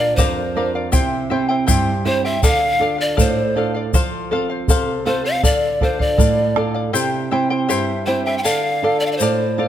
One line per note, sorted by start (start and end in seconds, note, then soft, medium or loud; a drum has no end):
0.00 0.16 A#2 medium
0.00 0.41 D4 soft
0.00 0.41 F4 soft
0.00 0.41 A#4 medium
0.00 0.17 D5 soft
0.00 0.18 D5 medium
0.00 0.18 F5 soft
0.16 0.91 F2 medium
0.16 0.55 A#4 medium
0.16 0.73 C5 medium
0.16 0.56 D5 medium
0.16 0.56 F5 medium
0.16 bombo low medium
0.16 shaker medium
0.55 0.86 D4 soft
0.55 0.86 F4 soft
0.55 0.75 A#4 medium
0.55 0.86 A#4 soft
0.55 0.74 D5 medium
0.55 0.74 F5 medium
0.75 0.92 D5 soft
0.75 0.92 F5 soft
0.92 1.66 C3 medium
0.92 1.30 E4 medium
0.92 1.30 G4 medium
0.92 1.30 C5 medium
0.92 1.29 E5 medium
0.92 1.30 G5 medium
0.92 bombo low medium
0.92 shaker loud
1.30 1.90 C4 soft
1.30 1.91 E4 soft
1.30 1.49 E4 medium
1.30 1.91 G4 medium
1.30 1.49 C5 medium
1.30 1.49 E5 medium
1.30 1.47 G5 medium
1.49 1.66 E4 soft
1.49 1.66 C5 soft
1.49 1.66 G5 medium
1.67 2.41 G2 medium
1.67 2.05 E4 medium
1.67 2.05 G4 medium
1.67 2.05 C5 loud
1.67 2.04 E5 medium
1.67 2.05 G5 medium
1.67 bombo low medium
1.67 shaker medium
2.05 2.35 C4 soft
2.05 2.35 E4 soft
2.05 2.24 E4 medium
2.05 2.36 G4 medium
2.05 2.24 C5 medium
2.05 2.23 C5 medium
2.05 2.24 E5 medium
2.05 2.23 G5 medium
2.25 2.43 E4 soft
2.25 2.43 C5 soft
2.25 2.44 E5 medium
2.25 2.43 G5 soft
2.43 3.16 D3 medium
2.43 2.79 A4 medium
2.43 2.80 D5 medium
2.43 2.99 F5 loud
2.43 2.81 F5 medium
2.43 bombo low medium
2.43 shaker loud
2.79 3.40 D4 soft
2.79 3.41 F4 soft
2.79 3.41 A4 medium
2.79 2.99 A4 medium
2.79 2.98 D5 medium
2.79 2.97 F5 medium
2.98 3.16 D5 soft
2.98 3.21 D5 medium
2.98 3.16 F5 medium
3.17 3.91 A2 medium
3.17 3.55 A4 medium
3.17 3.75 C5 medium
3.17 3.55 D5 medium
3.17 3.55 F5 medium
3.17 bombo low medium
3.17 shaker medium
3.56 3.86 D4 soft
3.56 3.86 F4 soft
3.56 3.86 A4 soft
3.56 3.75 A4 medium
3.56 3.75 D5 medium
3.56 3.73 F5 medium
3.74 3.94 D5 soft
3.74 3.93 F5 medium
3.93 4.67 F3 medium
3.93 4.30 A4 medium
3.93 4.30 C5 loud
3.93 4.31 F5 loud
3.93 bombo low medium
3.93 shaker medium
4.31 4.91 C4 medium
4.31 4.92 F4 soft
4.31 4.50 A4 medium
4.31 4.92 A4 medium
4.31 4.49 C5 medium
4.31 4.48 F5 medium
4.50 4.68 C5 soft
4.50 4.69 F5 medium
4.68 5.42 C3 medium
4.68 5.04 A4 medium
4.68 5.05 C5 medium
4.68 5.06 F5 loud
4.68 bombo low medium
4.68 shaker medium
5.05 5.36 C4 soft
5.05 5.36 F4 soft
5.05 5.25 A4 medium
5.05 5.37 A4 medium
5.05 5.24 C5 medium
5.05 5.27 C5 medium
5.05 5.23 F5 medium
5.24 5.44 C5 soft
5.24 5.43 F5 medium
5.24 5.46 F5 medium
5.43 6.17 D3 medium
5.43 5.80 A4 medium
5.43 5.81 D5 medium
5.43 5.85 D5 loud
5.43 5.82 F5 medium
5.43 bombo low medium
5.43 shaker medium
5.81 6.41 D4 soft
5.81 6.41 F4 soft
5.81 6.00 A4 medium
5.81 6.42 A4 medium
5.81 6.03 C5 medium
5.81 6.00 D5 medium
5.81 5.98 F5 medium
5.81 bombo low medium
5.99 6.18 D5 soft
5.99 6.57 D5 medium
5.99 6.18 F5 soft
5.99 bombo low medium
6.18 6.92 A2 medium
6.18 6.55 A4 medium
6.18 6.56 D5 medium
6.18 6.56 F5 medium
6.18 bombo low medium
6.18 shaker medium
6.56 6.86 D4 soft
6.56 6.87 F4 soft
6.56 6.75 A4 medium
6.56 6.87 A4 medium
6.56 6.74 D5 medium
6.56 6.73 F5 medium
6.56 bombo rim medium
6.74 6.93 D5 soft
6.74 6.93 F5 medium
6.93 7.67 C3 medium
6.93 7.30 E4 medium
6.93 7.31 G4 medium
6.93 7.31 C5 medium
6.93 7.30 E5 medium
6.93 7.31 G5 medium
6.93 shaker loud
7.31 7.92 C4 soft
7.31 7.51 E4 medium
7.31 7.92 E4 soft
7.31 7.92 G4 medium
7.31 7.50 C5 medium
7.31 7.50 E5 medium
7.31 7.49 G5 medium
7.50 7.68 E4 soft
7.50 7.68 C5 soft
7.50 7.69 G5 medium
7.69 8.42 G2 medium
7.69 8.06 E4 medium
7.69 8.07 G4 medium
7.69 8.06 C5 medium
7.69 8.06 E5 medium
7.69 8.06 G5 medium
7.69 shaker medium
8.06 8.37 C4 soft
8.06 8.26 E4 medium
8.06 8.37 E4 soft
8.06 8.38 G4 medium
8.06 8.27 C5 medium
8.06 8.26 C5 medium
8.06 8.26 E5 medium
8.06 8.25 G5 medium
8.25 8.44 E4 soft
8.25 8.45 C5 soft
8.25 8.37 E5 medium
8.25 8.45 G5 medium
8.38 8.45 G5 medium
8.43 9.18 D3 medium
8.43 8.82 A4 medium
8.43 8.83 D5 medium
8.43 9.01 F5 loud
8.43 8.83 F5 medium
8.43 shaker medium
8.82 9.43 D4 soft
8.82 9.43 F4 soft
8.82 9.02 A4 medium
8.82 9.43 A4 medium
8.82 9.02 D5 medium
8.82 9.01 F5 medium
9.00 9.08 D5 medium
9.00 9.21 D5 soft
9.00 9.20 F5 soft
9.06 9.08 F5 medium
9.12 9.18 D5 medium
9.17 9.68 A2 medium
9.17 9.68 C5 medium
9.17 shaker medium
9.21 9.57 A4 medium
9.21 9.58 D5 medium
9.21 9.59 F5 medium
9.58 9.68 D4 soft
9.58 9.68 F4 soft
9.58 9.68 A4 medium
9.58 9.68 D5 medium
9.58 9.68 F5 medium